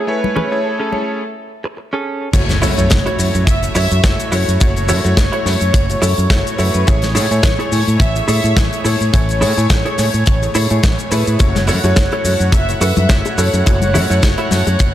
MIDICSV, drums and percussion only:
0, 0, Header, 1, 2, 480
1, 0, Start_track
1, 0, Tempo, 566038
1, 66, Time_signature, 4, 2, 24, 8
1, 12670, End_track
2, 0, Start_track
2, 0, Title_t, "Drums"
2, 206, Note_on_c, 9, 63, 90
2, 291, Note_off_c, 9, 63, 0
2, 309, Note_on_c, 9, 64, 70
2, 394, Note_off_c, 9, 64, 0
2, 784, Note_on_c, 9, 63, 57
2, 869, Note_off_c, 9, 63, 0
2, 1979, Note_on_c, 9, 42, 102
2, 1980, Note_on_c, 9, 36, 118
2, 1987, Note_on_c, 9, 82, 60
2, 1988, Note_on_c, 9, 49, 93
2, 2064, Note_off_c, 9, 42, 0
2, 2065, Note_off_c, 9, 36, 0
2, 2071, Note_off_c, 9, 82, 0
2, 2073, Note_off_c, 9, 49, 0
2, 2113, Note_on_c, 9, 42, 59
2, 2119, Note_on_c, 9, 38, 38
2, 2121, Note_on_c, 9, 82, 50
2, 2198, Note_off_c, 9, 42, 0
2, 2204, Note_off_c, 9, 38, 0
2, 2205, Note_off_c, 9, 82, 0
2, 2218, Note_on_c, 9, 46, 102
2, 2228, Note_on_c, 9, 82, 82
2, 2303, Note_off_c, 9, 46, 0
2, 2313, Note_off_c, 9, 82, 0
2, 2353, Note_on_c, 9, 42, 54
2, 2359, Note_on_c, 9, 82, 53
2, 2438, Note_off_c, 9, 42, 0
2, 2444, Note_off_c, 9, 82, 0
2, 2458, Note_on_c, 9, 42, 97
2, 2465, Note_on_c, 9, 38, 127
2, 2466, Note_on_c, 9, 82, 64
2, 2472, Note_on_c, 9, 36, 127
2, 2543, Note_off_c, 9, 42, 0
2, 2550, Note_off_c, 9, 38, 0
2, 2550, Note_off_c, 9, 82, 0
2, 2557, Note_off_c, 9, 36, 0
2, 2599, Note_on_c, 9, 42, 55
2, 2684, Note_off_c, 9, 42, 0
2, 2702, Note_on_c, 9, 46, 106
2, 2709, Note_on_c, 9, 82, 86
2, 2787, Note_off_c, 9, 46, 0
2, 2794, Note_off_c, 9, 82, 0
2, 2840, Note_on_c, 9, 82, 50
2, 2842, Note_on_c, 9, 42, 53
2, 2924, Note_off_c, 9, 82, 0
2, 2927, Note_off_c, 9, 42, 0
2, 2943, Note_on_c, 9, 36, 102
2, 2943, Note_on_c, 9, 42, 97
2, 2949, Note_on_c, 9, 82, 65
2, 3028, Note_off_c, 9, 36, 0
2, 3028, Note_off_c, 9, 42, 0
2, 3034, Note_off_c, 9, 82, 0
2, 3075, Note_on_c, 9, 42, 56
2, 3081, Note_on_c, 9, 82, 52
2, 3160, Note_off_c, 9, 42, 0
2, 3165, Note_off_c, 9, 82, 0
2, 3182, Note_on_c, 9, 82, 85
2, 3183, Note_on_c, 9, 46, 108
2, 3267, Note_off_c, 9, 82, 0
2, 3268, Note_off_c, 9, 46, 0
2, 3318, Note_on_c, 9, 42, 60
2, 3320, Note_on_c, 9, 82, 50
2, 3403, Note_off_c, 9, 42, 0
2, 3405, Note_off_c, 9, 82, 0
2, 3423, Note_on_c, 9, 36, 127
2, 3424, Note_on_c, 9, 82, 57
2, 3425, Note_on_c, 9, 38, 127
2, 3425, Note_on_c, 9, 42, 101
2, 3508, Note_off_c, 9, 36, 0
2, 3509, Note_off_c, 9, 82, 0
2, 3510, Note_off_c, 9, 38, 0
2, 3510, Note_off_c, 9, 42, 0
2, 3557, Note_on_c, 9, 42, 56
2, 3559, Note_on_c, 9, 82, 53
2, 3642, Note_off_c, 9, 42, 0
2, 3644, Note_off_c, 9, 82, 0
2, 3665, Note_on_c, 9, 46, 107
2, 3665, Note_on_c, 9, 82, 76
2, 3749, Note_off_c, 9, 46, 0
2, 3750, Note_off_c, 9, 82, 0
2, 3802, Note_on_c, 9, 82, 51
2, 3806, Note_on_c, 9, 42, 58
2, 3886, Note_off_c, 9, 82, 0
2, 3891, Note_off_c, 9, 42, 0
2, 3903, Note_on_c, 9, 42, 104
2, 3908, Note_on_c, 9, 82, 54
2, 3912, Note_on_c, 9, 36, 127
2, 3988, Note_off_c, 9, 42, 0
2, 3993, Note_off_c, 9, 82, 0
2, 3996, Note_off_c, 9, 36, 0
2, 4040, Note_on_c, 9, 42, 55
2, 4045, Note_on_c, 9, 82, 46
2, 4125, Note_off_c, 9, 42, 0
2, 4130, Note_off_c, 9, 82, 0
2, 4143, Note_on_c, 9, 82, 96
2, 4149, Note_on_c, 9, 46, 109
2, 4227, Note_off_c, 9, 82, 0
2, 4233, Note_off_c, 9, 46, 0
2, 4276, Note_on_c, 9, 42, 53
2, 4287, Note_on_c, 9, 82, 46
2, 4361, Note_off_c, 9, 42, 0
2, 4372, Note_off_c, 9, 82, 0
2, 4385, Note_on_c, 9, 36, 127
2, 4385, Note_on_c, 9, 38, 115
2, 4387, Note_on_c, 9, 42, 105
2, 4392, Note_on_c, 9, 82, 67
2, 4470, Note_off_c, 9, 36, 0
2, 4470, Note_off_c, 9, 38, 0
2, 4472, Note_off_c, 9, 42, 0
2, 4477, Note_off_c, 9, 82, 0
2, 4517, Note_on_c, 9, 42, 53
2, 4602, Note_off_c, 9, 42, 0
2, 4631, Note_on_c, 9, 38, 37
2, 4631, Note_on_c, 9, 46, 108
2, 4635, Note_on_c, 9, 82, 77
2, 4716, Note_off_c, 9, 38, 0
2, 4716, Note_off_c, 9, 46, 0
2, 4720, Note_off_c, 9, 82, 0
2, 4757, Note_on_c, 9, 42, 54
2, 4758, Note_on_c, 9, 82, 46
2, 4842, Note_off_c, 9, 42, 0
2, 4843, Note_off_c, 9, 82, 0
2, 4868, Note_on_c, 9, 36, 127
2, 4870, Note_on_c, 9, 42, 105
2, 4873, Note_on_c, 9, 82, 61
2, 4952, Note_off_c, 9, 36, 0
2, 4955, Note_off_c, 9, 42, 0
2, 4958, Note_off_c, 9, 82, 0
2, 4999, Note_on_c, 9, 42, 58
2, 5006, Note_on_c, 9, 82, 47
2, 5084, Note_off_c, 9, 42, 0
2, 5091, Note_off_c, 9, 82, 0
2, 5102, Note_on_c, 9, 46, 103
2, 5110, Note_on_c, 9, 82, 90
2, 5187, Note_off_c, 9, 46, 0
2, 5195, Note_off_c, 9, 82, 0
2, 5237, Note_on_c, 9, 42, 50
2, 5246, Note_on_c, 9, 82, 49
2, 5322, Note_off_c, 9, 42, 0
2, 5331, Note_off_c, 9, 82, 0
2, 5343, Note_on_c, 9, 36, 127
2, 5344, Note_on_c, 9, 82, 59
2, 5349, Note_on_c, 9, 38, 121
2, 5351, Note_on_c, 9, 42, 94
2, 5427, Note_off_c, 9, 36, 0
2, 5429, Note_off_c, 9, 82, 0
2, 5433, Note_off_c, 9, 38, 0
2, 5436, Note_off_c, 9, 42, 0
2, 5486, Note_on_c, 9, 42, 50
2, 5486, Note_on_c, 9, 82, 47
2, 5571, Note_off_c, 9, 42, 0
2, 5571, Note_off_c, 9, 82, 0
2, 5583, Note_on_c, 9, 46, 104
2, 5588, Note_on_c, 9, 82, 77
2, 5668, Note_off_c, 9, 46, 0
2, 5673, Note_off_c, 9, 82, 0
2, 5716, Note_on_c, 9, 82, 51
2, 5721, Note_on_c, 9, 42, 53
2, 5800, Note_off_c, 9, 82, 0
2, 5806, Note_off_c, 9, 42, 0
2, 5825, Note_on_c, 9, 42, 85
2, 5832, Note_on_c, 9, 82, 54
2, 5834, Note_on_c, 9, 36, 127
2, 5910, Note_off_c, 9, 42, 0
2, 5917, Note_off_c, 9, 82, 0
2, 5919, Note_off_c, 9, 36, 0
2, 5952, Note_on_c, 9, 42, 59
2, 5959, Note_on_c, 9, 38, 36
2, 5964, Note_on_c, 9, 82, 45
2, 6037, Note_off_c, 9, 42, 0
2, 6043, Note_off_c, 9, 38, 0
2, 6049, Note_off_c, 9, 82, 0
2, 6062, Note_on_c, 9, 46, 114
2, 6073, Note_on_c, 9, 82, 85
2, 6147, Note_off_c, 9, 46, 0
2, 6158, Note_off_c, 9, 82, 0
2, 6198, Note_on_c, 9, 42, 54
2, 6207, Note_on_c, 9, 82, 49
2, 6283, Note_off_c, 9, 42, 0
2, 6292, Note_off_c, 9, 82, 0
2, 6302, Note_on_c, 9, 38, 122
2, 6302, Note_on_c, 9, 42, 100
2, 6303, Note_on_c, 9, 82, 61
2, 6304, Note_on_c, 9, 36, 127
2, 6387, Note_off_c, 9, 38, 0
2, 6387, Note_off_c, 9, 42, 0
2, 6388, Note_off_c, 9, 82, 0
2, 6389, Note_off_c, 9, 36, 0
2, 6442, Note_on_c, 9, 42, 51
2, 6527, Note_off_c, 9, 42, 0
2, 6547, Note_on_c, 9, 82, 81
2, 6550, Note_on_c, 9, 46, 104
2, 6632, Note_off_c, 9, 82, 0
2, 6635, Note_off_c, 9, 46, 0
2, 6681, Note_on_c, 9, 42, 49
2, 6686, Note_on_c, 9, 82, 49
2, 6766, Note_off_c, 9, 42, 0
2, 6771, Note_off_c, 9, 82, 0
2, 6781, Note_on_c, 9, 42, 107
2, 6783, Note_on_c, 9, 36, 114
2, 6793, Note_on_c, 9, 82, 56
2, 6866, Note_off_c, 9, 42, 0
2, 6868, Note_off_c, 9, 36, 0
2, 6878, Note_off_c, 9, 82, 0
2, 6916, Note_on_c, 9, 82, 44
2, 6920, Note_on_c, 9, 42, 55
2, 7001, Note_off_c, 9, 82, 0
2, 7005, Note_off_c, 9, 42, 0
2, 7024, Note_on_c, 9, 82, 80
2, 7026, Note_on_c, 9, 46, 104
2, 7109, Note_off_c, 9, 82, 0
2, 7111, Note_off_c, 9, 46, 0
2, 7154, Note_on_c, 9, 42, 56
2, 7164, Note_on_c, 9, 82, 51
2, 7239, Note_off_c, 9, 42, 0
2, 7249, Note_off_c, 9, 82, 0
2, 7264, Note_on_c, 9, 36, 127
2, 7264, Note_on_c, 9, 38, 105
2, 7265, Note_on_c, 9, 42, 98
2, 7270, Note_on_c, 9, 82, 52
2, 7349, Note_off_c, 9, 36, 0
2, 7349, Note_off_c, 9, 38, 0
2, 7350, Note_off_c, 9, 42, 0
2, 7355, Note_off_c, 9, 82, 0
2, 7400, Note_on_c, 9, 42, 57
2, 7402, Note_on_c, 9, 82, 49
2, 7485, Note_off_c, 9, 42, 0
2, 7487, Note_off_c, 9, 82, 0
2, 7505, Note_on_c, 9, 82, 78
2, 7510, Note_on_c, 9, 46, 102
2, 7590, Note_off_c, 9, 82, 0
2, 7595, Note_off_c, 9, 46, 0
2, 7635, Note_on_c, 9, 42, 51
2, 7644, Note_on_c, 9, 82, 56
2, 7720, Note_off_c, 9, 42, 0
2, 7728, Note_off_c, 9, 82, 0
2, 7746, Note_on_c, 9, 42, 96
2, 7748, Note_on_c, 9, 36, 127
2, 7755, Note_on_c, 9, 82, 54
2, 7831, Note_off_c, 9, 42, 0
2, 7833, Note_off_c, 9, 36, 0
2, 7840, Note_off_c, 9, 82, 0
2, 7876, Note_on_c, 9, 42, 49
2, 7891, Note_on_c, 9, 82, 46
2, 7961, Note_off_c, 9, 42, 0
2, 7976, Note_off_c, 9, 82, 0
2, 7987, Note_on_c, 9, 82, 86
2, 7988, Note_on_c, 9, 46, 109
2, 8072, Note_off_c, 9, 46, 0
2, 8072, Note_off_c, 9, 82, 0
2, 8119, Note_on_c, 9, 42, 55
2, 8124, Note_on_c, 9, 82, 49
2, 8204, Note_off_c, 9, 42, 0
2, 8209, Note_off_c, 9, 82, 0
2, 8223, Note_on_c, 9, 42, 102
2, 8225, Note_on_c, 9, 82, 61
2, 8226, Note_on_c, 9, 36, 123
2, 8227, Note_on_c, 9, 38, 112
2, 8308, Note_off_c, 9, 42, 0
2, 8310, Note_off_c, 9, 82, 0
2, 8311, Note_off_c, 9, 36, 0
2, 8312, Note_off_c, 9, 38, 0
2, 8358, Note_on_c, 9, 42, 55
2, 8443, Note_off_c, 9, 42, 0
2, 8462, Note_on_c, 9, 38, 35
2, 8464, Note_on_c, 9, 46, 115
2, 8466, Note_on_c, 9, 82, 79
2, 8547, Note_off_c, 9, 38, 0
2, 8549, Note_off_c, 9, 46, 0
2, 8551, Note_off_c, 9, 82, 0
2, 8596, Note_on_c, 9, 42, 52
2, 8598, Note_on_c, 9, 82, 49
2, 8681, Note_off_c, 9, 42, 0
2, 8683, Note_off_c, 9, 82, 0
2, 8700, Note_on_c, 9, 42, 91
2, 8706, Note_on_c, 9, 82, 59
2, 8711, Note_on_c, 9, 36, 127
2, 8784, Note_off_c, 9, 42, 0
2, 8791, Note_off_c, 9, 82, 0
2, 8796, Note_off_c, 9, 36, 0
2, 8841, Note_on_c, 9, 82, 50
2, 8842, Note_on_c, 9, 42, 51
2, 8926, Note_off_c, 9, 82, 0
2, 8927, Note_off_c, 9, 42, 0
2, 8943, Note_on_c, 9, 46, 119
2, 8944, Note_on_c, 9, 82, 88
2, 9027, Note_off_c, 9, 46, 0
2, 9029, Note_off_c, 9, 82, 0
2, 9074, Note_on_c, 9, 42, 56
2, 9078, Note_on_c, 9, 82, 49
2, 9159, Note_off_c, 9, 42, 0
2, 9163, Note_off_c, 9, 82, 0
2, 9184, Note_on_c, 9, 42, 87
2, 9188, Note_on_c, 9, 36, 127
2, 9189, Note_on_c, 9, 38, 108
2, 9192, Note_on_c, 9, 82, 52
2, 9268, Note_off_c, 9, 42, 0
2, 9273, Note_off_c, 9, 36, 0
2, 9273, Note_off_c, 9, 38, 0
2, 9277, Note_off_c, 9, 82, 0
2, 9315, Note_on_c, 9, 42, 51
2, 9323, Note_on_c, 9, 82, 45
2, 9399, Note_off_c, 9, 42, 0
2, 9408, Note_off_c, 9, 82, 0
2, 9425, Note_on_c, 9, 46, 103
2, 9426, Note_on_c, 9, 82, 93
2, 9510, Note_off_c, 9, 46, 0
2, 9511, Note_off_c, 9, 82, 0
2, 9556, Note_on_c, 9, 82, 56
2, 9565, Note_on_c, 9, 42, 53
2, 9641, Note_off_c, 9, 82, 0
2, 9650, Note_off_c, 9, 42, 0
2, 9660, Note_on_c, 9, 42, 95
2, 9662, Note_on_c, 9, 60, 52
2, 9667, Note_on_c, 9, 82, 55
2, 9668, Note_on_c, 9, 36, 122
2, 9745, Note_off_c, 9, 42, 0
2, 9747, Note_off_c, 9, 60, 0
2, 9752, Note_off_c, 9, 82, 0
2, 9753, Note_off_c, 9, 36, 0
2, 9796, Note_on_c, 9, 38, 36
2, 9804, Note_on_c, 9, 42, 55
2, 9804, Note_on_c, 9, 63, 101
2, 9805, Note_on_c, 9, 82, 46
2, 9881, Note_off_c, 9, 38, 0
2, 9889, Note_off_c, 9, 42, 0
2, 9889, Note_off_c, 9, 63, 0
2, 9890, Note_off_c, 9, 82, 0
2, 9896, Note_on_c, 9, 46, 107
2, 9905, Note_on_c, 9, 82, 88
2, 9911, Note_on_c, 9, 64, 72
2, 9981, Note_off_c, 9, 46, 0
2, 9990, Note_off_c, 9, 82, 0
2, 9996, Note_off_c, 9, 64, 0
2, 10038, Note_on_c, 9, 42, 49
2, 10038, Note_on_c, 9, 82, 48
2, 10046, Note_on_c, 9, 60, 73
2, 10123, Note_off_c, 9, 42, 0
2, 10123, Note_off_c, 9, 82, 0
2, 10131, Note_off_c, 9, 60, 0
2, 10144, Note_on_c, 9, 82, 63
2, 10145, Note_on_c, 9, 38, 117
2, 10148, Note_on_c, 9, 42, 94
2, 10149, Note_on_c, 9, 36, 127
2, 10229, Note_off_c, 9, 38, 0
2, 10229, Note_off_c, 9, 82, 0
2, 10232, Note_off_c, 9, 42, 0
2, 10234, Note_off_c, 9, 36, 0
2, 10276, Note_on_c, 9, 42, 49
2, 10283, Note_on_c, 9, 60, 54
2, 10360, Note_off_c, 9, 42, 0
2, 10368, Note_off_c, 9, 60, 0
2, 10384, Note_on_c, 9, 63, 69
2, 10385, Note_on_c, 9, 46, 105
2, 10388, Note_on_c, 9, 82, 86
2, 10469, Note_off_c, 9, 63, 0
2, 10470, Note_off_c, 9, 46, 0
2, 10473, Note_off_c, 9, 82, 0
2, 10515, Note_on_c, 9, 42, 57
2, 10520, Note_on_c, 9, 82, 54
2, 10600, Note_off_c, 9, 42, 0
2, 10604, Note_off_c, 9, 82, 0
2, 10620, Note_on_c, 9, 36, 110
2, 10626, Note_on_c, 9, 42, 98
2, 10627, Note_on_c, 9, 82, 63
2, 10628, Note_on_c, 9, 60, 73
2, 10705, Note_off_c, 9, 36, 0
2, 10711, Note_off_c, 9, 42, 0
2, 10712, Note_off_c, 9, 82, 0
2, 10713, Note_off_c, 9, 60, 0
2, 10759, Note_on_c, 9, 42, 56
2, 10767, Note_on_c, 9, 82, 45
2, 10843, Note_off_c, 9, 42, 0
2, 10852, Note_off_c, 9, 82, 0
2, 10862, Note_on_c, 9, 46, 110
2, 10864, Note_on_c, 9, 60, 51
2, 10866, Note_on_c, 9, 82, 88
2, 10947, Note_off_c, 9, 46, 0
2, 10949, Note_off_c, 9, 60, 0
2, 10951, Note_off_c, 9, 82, 0
2, 10994, Note_on_c, 9, 82, 55
2, 10998, Note_on_c, 9, 63, 97
2, 10999, Note_on_c, 9, 42, 56
2, 11079, Note_off_c, 9, 82, 0
2, 11083, Note_off_c, 9, 42, 0
2, 11083, Note_off_c, 9, 63, 0
2, 11101, Note_on_c, 9, 42, 91
2, 11102, Note_on_c, 9, 38, 104
2, 11106, Note_on_c, 9, 36, 116
2, 11108, Note_on_c, 9, 82, 63
2, 11186, Note_off_c, 9, 38, 0
2, 11186, Note_off_c, 9, 42, 0
2, 11191, Note_off_c, 9, 36, 0
2, 11193, Note_off_c, 9, 82, 0
2, 11235, Note_on_c, 9, 42, 49
2, 11241, Note_on_c, 9, 60, 78
2, 11242, Note_on_c, 9, 82, 50
2, 11319, Note_off_c, 9, 42, 0
2, 11326, Note_off_c, 9, 60, 0
2, 11326, Note_off_c, 9, 82, 0
2, 11346, Note_on_c, 9, 46, 107
2, 11348, Note_on_c, 9, 82, 88
2, 11431, Note_off_c, 9, 46, 0
2, 11432, Note_off_c, 9, 82, 0
2, 11478, Note_on_c, 9, 82, 59
2, 11479, Note_on_c, 9, 42, 60
2, 11480, Note_on_c, 9, 60, 51
2, 11563, Note_off_c, 9, 82, 0
2, 11564, Note_off_c, 9, 42, 0
2, 11565, Note_off_c, 9, 60, 0
2, 11586, Note_on_c, 9, 42, 100
2, 11591, Note_on_c, 9, 82, 60
2, 11592, Note_on_c, 9, 36, 115
2, 11671, Note_off_c, 9, 42, 0
2, 11676, Note_off_c, 9, 82, 0
2, 11677, Note_off_c, 9, 36, 0
2, 11716, Note_on_c, 9, 42, 53
2, 11718, Note_on_c, 9, 63, 87
2, 11720, Note_on_c, 9, 82, 50
2, 11801, Note_off_c, 9, 42, 0
2, 11802, Note_off_c, 9, 63, 0
2, 11805, Note_off_c, 9, 82, 0
2, 11828, Note_on_c, 9, 64, 82
2, 11829, Note_on_c, 9, 46, 110
2, 11830, Note_on_c, 9, 82, 93
2, 11833, Note_on_c, 9, 60, 83
2, 11913, Note_off_c, 9, 64, 0
2, 11914, Note_off_c, 9, 46, 0
2, 11915, Note_off_c, 9, 82, 0
2, 11918, Note_off_c, 9, 60, 0
2, 11961, Note_on_c, 9, 42, 53
2, 11967, Note_on_c, 9, 82, 52
2, 12046, Note_off_c, 9, 42, 0
2, 12052, Note_off_c, 9, 82, 0
2, 12064, Note_on_c, 9, 82, 63
2, 12065, Note_on_c, 9, 42, 94
2, 12066, Note_on_c, 9, 60, 48
2, 12068, Note_on_c, 9, 36, 105
2, 12070, Note_on_c, 9, 38, 114
2, 12149, Note_off_c, 9, 82, 0
2, 12150, Note_off_c, 9, 42, 0
2, 12151, Note_off_c, 9, 60, 0
2, 12153, Note_off_c, 9, 36, 0
2, 12155, Note_off_c, 9, 38, 0
2, 12192, Note_on_c, 9, 42, 57
2, 12277, Note_off_c, 9, 42, 0
2, 12304, Note_on_c, 9, 46, 116
2, 12304, Note_on_c, 9, 63, 62
2, 12308, Note_on_c, 9, 38, 33
2, 12312, Note_on_c, 9, 82, 100
2, 12389, Note_off_c, 9, 46, 0
2, 12389, Note_off_c, 9, 63, 0
2, 12393, Note_off_c, 9, 38, 0
2, 12397, Note_off_c, 9, 82, 0
2, 12437, Note_on_c, 9, 60, 79
2, 12439, Note_on_c, 9, 42, 52
2, 12441, Note_on_c, 9, 82, 51
2, 12522, Note_off_c, 9, 60, 0
2, 12524, Note_off_c, 9, 42, 0
2, 12526, Note_off_c, 9, 82, 0
2, 12542, Note_on_c, 9, 42, 93
2, 12550, Note_on_c, 9, 82, 61
2, 12551, Note_on_c, 9, 36, 115
2, 12627, Note_off_c, 9, 42, 0
2, 12635, Note_off_c, 9, 82, 0
2, 12636, Note_off_c, 9, 36, 0
2, 12670, End_track
0, 0, End_of_file